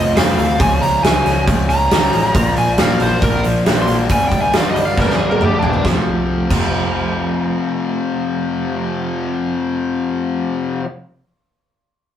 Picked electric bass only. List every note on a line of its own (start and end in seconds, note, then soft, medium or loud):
0.00 0.13 F1 medium
0.15 0.35 F1 medium
0.38 0.57 D2 medium
0.60 0.80 C#2 medium
0.81 1.01 C#2 medium
1.02 1.22 C#2 medium
1.24 1.44 C#2 medium
1.48 1.67 C#2 medium
1.68 1.88 C#2 medium
1.90 2.10 C#2 medium
2.12 2.32 A1 medium
2.35 2.54 A#1 medium
2.57 2.76 A#1 medium
2.78 2.98 A#1 medium
3.00 3.20 A#1 medium
3.22 3.42 A#1 medium
3.45 3.64 A#1 medium
3.66 3.86 A#1 medium
3.89 4.08 A#1 medium
4.10 4.30 G1 medium
4.32 4.52 G1 medium
4.54 4.74 G1 medium
4.76 4.95 G1 medium
4.97 5.17 G1 medium
5.19 5.39 G1 medium
5.42 5.61 G1 medium
5.63 5.83 E1 medium
5.85 5.97 F1 medium
6.51 10.79 F1 medium